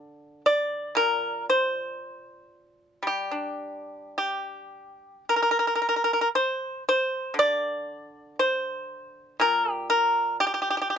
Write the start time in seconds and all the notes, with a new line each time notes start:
Already playing: D3 D5
0.46 D5
0.95 A#2 A#4
1.50 C5
3.03 G3
3.07 G4
3.31 D4
4.18 G4
5.29 A#4
5.36 A#4
5.42 A#4
5.51 A#4
5.59 A#4
5.67 A#4
5.75 A#4
5.82 A#4
5.89 A#4
5.96 A#4
6.04 A#4
6.13 A#4
6.21 A#4
6.35 C5
6.89 C5
7.34 D3
7.39 D5
8.39 C5
9.40 A#2 A#4
9.72 G4
9.90 A#4
10.40 G4
10.54 G4
10.62 G4
10.70 G4
10.77 G4
10.82 G4
10.90 G4